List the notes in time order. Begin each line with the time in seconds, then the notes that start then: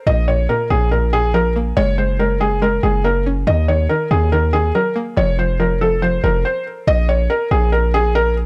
0.07 A#1 A#2 D#5
0.28 A#2 C#5
0.49 A#2 A#4
0.70 A#1 A#2 G#4
0.91 A#2 A#4
1.13 A#2 G#4
1.34 F3 A#4
1.56 A#3
1.77 F#1 G#3 C#5
1.98 G#3 C5
2.19 G#3 A#4
2.40 G#3 G#4
2.62 G#3 A#4
2.83 F#1 G#3 G#4
3.04 A#3 A#4
3.26 C#4
3.47 D#2 D#3 D#5
3.68 D#3 C#5
3.89 D#3 A#4
4.11 D#2 D#3 G#4
4.32 D#3 A#4
4.53 D#3 G#4
4.75 F#3 A#4
4.96 A#3
5.17 F1 F3 C#5
5.39 F3 C5
5.60 F3 A#4
5.81 F3 A4
6.02 F3 C5
6.24 F1 F3 A#4
6.45 C5
6.87 A#1 D#5
7.09 C#5
7.30 A#4
7.51 A#1 G#4
7.72 A#4
7.94 G#4
8.15 A#4